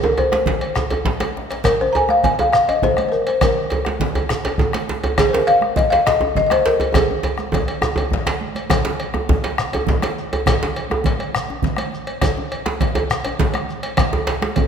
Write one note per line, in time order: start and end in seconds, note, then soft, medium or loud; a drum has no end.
0.02 0.18 A#4 medium
0.02 djembe tone loud
0.02 djembe tone medium
0.02 shekere soft
0.18 0.31 C5 medium
0.18 cowbell soft
0.18 djembe slap soft
0.18 djembe tone medium
0.32 0.87 C5 medium
0.32 bombo rim medium
0.32 djembe slap medium
0.32 high conga medium
0.32 shekere soft
0.46 bombo low medium
0.46 djembe slap medium
0.46 low conga medium
0.46 djembe bass medium
0.61 cowbell soft
0.76 bombo rim medium
0.76 high conga soft
0.76 djembe tone medium
0.76 shekere medium
0.90 cowbell soft
0.90 djembe tone medium
1.05 bombo low medium
1.05 djembe slap medium
1.05 low conga medium
1.05 djembe bass medium
1.20 bombo rim medium
1.20 cowbell soft
1.20 djembe slap medium
1.20 high conga medium
1.20 djembe bass soft
1.36 bombo rim soft
1.36 djembe slap soft
1.36 high conga soft
1.50 bombo rim soft
1.50 cowbell soft
1.50 djembe slap medium
1.50 shekere soft
1.64 1.78 A#4 medium
1.64 bombo rim medium
1.64 bombo low medium
1.64 cowbell medium
1.64 djembe slap medium
1.64 low conga medium
1.64 djembe bass medium
1.64 shekere medium
1.79 1.92 C5 medium
1.79 bombo rim soft
1.79 high conga soft
1.79 djembe tone medium
1.93 2.03 G#5 medium
1.93 1.95 A#5 medium
1.93 bombo rim soft
1.93 cowbell soft
1.93 djembe slap soft
1.93 djembe tone medium
2.09 2.25 F5 medium
2.09 bombo rim medium
2.09 high conga medium
2.24 2.38 G#5 medium
2.24 bombo low medium
2.24 cowbell soft
2.24 djembe slap medium
2.24 low conga medium
2.24 djembe bass medium
2.39 2.51 F5 medium
2.39 cowbell soft
2.39 high conga soft
2.39 djembe tone medium
2.53 2.68 F5 medium
2.53 bombo rim medium
2.53 high conga soft
2.53 shekere medium
2.68 2.83 D#5 medium
2.68 bombo rim soft
2.68 cowbell soft
2.68 high conga soft
2.68 djembe tone medium
2.82 3.07 C5 medium
2.82 bombo low medium
2.82 djembe slap medium
2.82 djembe tone medium
2.82 low conga medium
2.82 djembe bass medium
2.82 shekere soft
2.97 bombo rim medium
2.97 cowbell soft
2.97 djembe slap soft
2.97 high conga medium
3.09 3.27 A#4 medium
3.09 3.12 C5 medium
3.09 bombo rim soft
3.13 high conga soft
3.13 shekere soft
3.27 3.41 C5 medium
3.27 cowbell soft
3.41 3.97 A#4 medium
3.41 bombo rim medium
3.41 bombo low medium
3.41 cowbell medium
3.41 djembe slap medium
3.41 low conga medium
3.41 djembe bass medium
3.41 shekere medium
3.56 bombo rim soft
3.56 high conga soft
3.70 bombo rim soft
3.70 cowbell soft
3.70 djembe slap soft
3.70 djembe tone loud
3.85 bombo rim medium
3.85 djembe slap medium
3.85 high conga medium
4.00 bombo low medium
4.00 djembe slap medium
4.00 low conga medium
4.00 djembe bass medium
4.15 cowbell soft
4.15 djembe tone loud
4.15 high conga soft
4.29 bombo rim loud
4.29 djembe slap medium
4.29 high conga soft
4.29 shekere medium
4.44 bombo rim soft
4.44 cowbell medium
4.44 djembe slap medium
4.44 high conga soft
4.44 djembe tone medium
4.58 bombo low medium
4.58 djembe tone loud
4.58 low conga medium
4.58 shekere soft
4.73 bombo rim medium
4.73 cowbell soft
4.73 djembe slap medium
4.73 djembe slap soft
4.73 high conga medium
4.88 bombo rim soft
4.88 djembe slap medium
4.88 high conga soft
5.04 cowbell soft
5.04 djembe tone medium
5.18 5.23 G#4 medium
5.18 bombo rim medium
5.18 bombo low medium
5.18 cowbell medium
5.18 djembe slap medium
5.18 low conga medium
5.18 djembe bass medium
5.18 shekere medium
5.29 5.33 C5 medium
5.33 5.48 A#4 medium
5.33 bombo rim soft
5.33 djembe slap medium
5.33 high conga soft
5.33 djembe tone medium
5.47 5.78 F5 loud
5.47 bombo rim soft
5.47 cowbell soft
5.47 djembe slap soft
5.61 bombo rim medium
5.61 high conga medium
5.76 5.83 D#5 medium
5.76 bombo low loud
5.76 cowbell soft
5.76 djembe slap medium
5.76 low conga medium
5.76 djembe bass medium
5.90 6.06 F5 medium
5.90 cowbell soft
5.90 djembe slap medium
5.90 high conga soft
6.06 6.35 D#5 medium
6.06 bombo rim loud
6.06 djembe slap medium
6.06 high conga soft
6.06 shekere medium
6.21 bombo rim soft
6.21 djembe tone medium
6.21 high conga soft
6.22 djembe tone medium
6.35 6.45 D#5 medium
6.35 bombo low medium
6.35 djembe slap medium
6.35 low conga medium
6.35 djembe bass medium
6.35 shekere soft
6.46 6.50 D#5 medium
6.46 bombo rim medium
6.51 6.65 C5 medium
6.51 cowbell soft
6.51 djembe slap medium
6.51 djembe slap soft
6.51 high conga medium
6.65 6.93 A#4 medium
6.65 bombo rim soft
6.65 djembe slap medium
6.65 high conga soft
6.65 shekere soft
6.80 cowbell soft
6.80 djembe tone medium
6.94 8.37 G#4 medium
6.94 bombo rim medium
6.94 bombo low medium
6.94 cowbell medium
6.94 djembe slap medium
6.94 djembe tone loud
6.94 low conga medium
6.94 djembe bass medium
6.94 shekere medium
7.09 djembe slap soft
7.09 high conga soft
7.09 djembe tone medium
7.23 bombo rim soft
7.23 cowbell soft
7.23 djembe tone loud
7.38 bombo rim medium
7.38 high conga medium
7.38 shekere soft
7.52 bombo low medium
7.52 cowbell soft
7.52 djembe slap medium
7.52 djembe tone loud
7.52 low conga medium
7.52 djembe bass medium
7.68 cowbell soft
7.82 bombo rim loud
7.82 djembe tone loud
7.82 high conga soft
7.82 shekere medium
7.96 bombo rim soft
7.96 cowbell soft
7.96 djembe tone loud
7.96 low conga soft
7.99 djembe tone medium
8.11 bombo rim soft
8.11 bombo low medium
8.11 djembe slap medium
8.11 low conga soft
8.11 djembe bass medium
8.26 bombo rim medium
8.26 cowbell soft
8.26 djembe slap loud
8.26 djembe slap soft
8.26 low conga medium
8.41 high conga medium
8.55 cowbell soft
8.55 high conga medium
8.55 shekere soft
8.70 bombo rim loud
8.70 bombo low loud
8.70 cowbell medium
8.70 djembe slap medium
8.70 djembe tone loud
8.70 low conga medium
8.70 djembe bass medium
8.70 shekere medium
8.85 bombo rim soft
8.85 djembe slap medium
8.85 djembe tone medium
8.85 high conga soft
9.00 bombo rim soft
9.00 cowbell medium
9.00 djembe slap soft
9.14 bombo rim medium
9.14 high conga medium
9.14 djembe tone medium
9.29 bombo low loud
9.29 djembe slap medium
9.29 djembe tone loud
9.29 djembe bass medium
9.29 low conga medium
9.44 cowbell medium
9.44 djembe slap medium
9.44 high conga soft
9.58 bombo rim loud
9.58 high conga soft
9.58 shekere medium
9.72 cowbell medium
9.72 high conga soft
9.72 djembe tone medium
9.87 bombo low loud
9.87 djembe slap medium
9.87 djembe tone loud
9.87 low conga medium
9.87 djembe bass medium
9.87 shekere soft
10.02 bombo rim medium
10.02 cowbell medium
10.02 djembe slap medium
10.02 djembe slap soft
10.02 high conga medium
10.18 bombo rim soft
10.18 shekere soft
10.33 cowbell soft
10.33 djembe tone medium
10.46 bombo rim loud
10.46 bombo low loud
10.46 cowbell medium
10.46 djembe slap medium
10.46 djembe tone loud
10.46 low conga medium
10.46 djembe bass medium
10.46 shekere medium
10.61 bombo rim soft
10.61 djembe slap medium
10.61 high conga soft
10.61 djembe tone medium
10.76 bombo rim soft
10.76 cowbell soft
10.76 djembe slap soft
10.90 bombo rim medium
10.90 high conga medium
10.90 djembe tone medium
11.04 bombo low loud
11.04 cowbell medium
11.04 djembe slap medium
11.04 low conga medium
11.04 djembe bass medium
11.19 cowbell soft
11.19 high conga soft
11.34 bombo rim loud
11.34 high conga soft
11.34 shekere medium
11.48 bombo rim soft
11.48 high conga soft
11.48 djembe tone medium
11.62 bombo low medium
11.62 djembe slap medium
11.62 low conga medium
11.62 djembe bass medium
11.62 shekere soft
11.77 bombo rim medium
11.77 cowbell medium
11.77 djembe slap soft
11.77 high conga medium
11.92 bombo rim soft
11.92 high conga soft
11.92 shekere soft
12.07 cowbell soft
12.21 bombo rim medium
12.21 bombo low medium
12.21 cowbell medium
12.21 djembe slap medium
12.21 djembe tone loud
12.21 low conga medium
12.21 djembe bass medium
12.21 shekere medium
12.36 bombo rim soft
12.36 high conga soft
12.36 djembe tone medium
12.51 bombo rim soft
12.51 cowbell soft
12.51 djembe slap soft
12.66 bombo rim medium
12.66 djembe slap medium
12.66 high conga medium
12.81 bombo low medium
12.81 cowbell medium
12.81 djembe slap medium
12.81 low conga medium
12.81 djembe bass medium
12.95 cowbell medium
12.95 high conga soft
12.95 djembe tone loud
13.10 bombo rim loud
13.10 high conga soft
13.10 shekere medium
13.25 bombo rim soft
13.25 cowbell medium
13.25 djembe tone medium
13.25 high conga soft
13.39 bombo low loud
13.39 djembe slap medium
13.39 low conga medium
13.39 djembe bass medium
13.39 shekere soft
13.54 bombo rim medium
13.54 cowbell medium
13.54 djembe slap soft
13.54 high conga medium
13.69 bombo rim soft
13.69 high conga soft
13.69 shekere soft
13.83 cowbell medium
13.97 bombo rim loud
13.97 bombo low loud
13.97 cowbell medium
13.97 djembe slap medium
13.97 low conga medium
13.97 djembe bass medium
13.97 shekere medium
14.13 bombo rim soft
14.13 high conga soft
14.13 djembe tone loud
14.27 cowbell medium
14.27 djembe slap medium
14.42 bombo rim medium
14.42 djembe slap medium
14.42 high conga medium
14.44 djembe slap soft
14.56 bombo low loud
14.56 cowbell medium
14.56 djembe tone medium
14.56 low conga medium
14.56 djembe bass medium